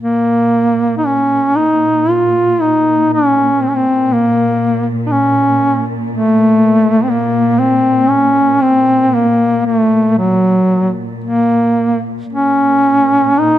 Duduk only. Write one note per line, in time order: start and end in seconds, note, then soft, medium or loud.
0.01 0.94 A#3 medium
0.98 1.08 D#4 medium
1.06 1.58 C#4 medium
1.56 2.12 D#4 medium
2.11 2.63 F4 medium
2.61 3.11 D#4 medium
3.13 3.63 C#4 medium
3.62 3.70 C4 medium
3.69 3.78 C#4 medium
3.76 4.14 C4 medium
4.13 4.87 A#3 medium
5.07 5.13 D#4 medium
5.12 5.86 C#4 medium
6.11 7.05 A3 medium
7.03 7.12 C4 medium
7.11 7.60 A#3 medium
7.59 8.11 C4 medium
8.10 8.64 C#4 medium
8.62 9.16 C4 medium
9.14 9.65 A#3 medium
9.66 10.14 A3 medium
10.19 10.92 F#3 medium
11.24 12.02 A#3 medium
12.33 13.40 C#4 medium
13.39 13.59 D#4 medium